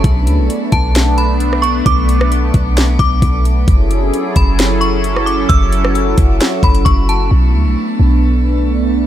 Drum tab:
HH |x-x-x-x-x-x-x-x-|x-x-x-x-x-x-x-x-|x-x-x-x-x-x-x-x-|x-x-x-x-x-xxx-x-|
SD |--------o----r--|---r----o-------|--------o----r--|---r----o-------|
BD |o-----o---------|o-----o---o-o---|o-----o---------|o-----o---o-o---|

HH |----------------|
SD |----------------|
BD |----------------|